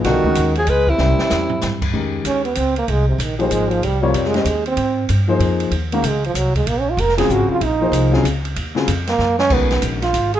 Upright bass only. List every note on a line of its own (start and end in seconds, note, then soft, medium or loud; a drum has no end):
0.04 0.23 B1 medium
0.24 muted upright bass stroke soft
0.36 0.67 D#2 medium
0.67 0.98 C#2 medium
0.99 1.17 C2 medium
1.19 muted upright bass stroke soft
1.31 1.61 E2 medium
1.63 1.93 G2 medium
1.94 2.24 F2 medium
2.25 2.55 D#2 medium
2.56 2.87 C#2 medium
2.88 3.18 C2 medium
3.18 3.50 A#1 medium
3.50 3.81 G#1 medium
3.82 4.13 C2 medium
4.14 4.44 F2 medium
4.45 4.76 D#2 medium
4.77 5.08 G#2 medium
5.09 5.39 G2 medium
5.39 5.71 F2 medium
5.71 6.02 D#2 medium
6.02 6.34 C#2 medium
6.34 6.65 C2 medium
6.66 6.97 A#1 medium
6.97 7.28 F1 loud
7.29 7.48 G#1 medium
7.49 muted upright bass stroke soft
7.61 7.91 A#1 medium
7.92 8.23 C2 loud
8.24 8.55 C#2 medium
8.56 8.87 D#2 medium
8.88 9.18 F2 loud
9.18 9.49 F#2 medium
9.50 9.81 B1 medium
9.82 10.13 A#1 medium
10.13 10.40 G#1 medium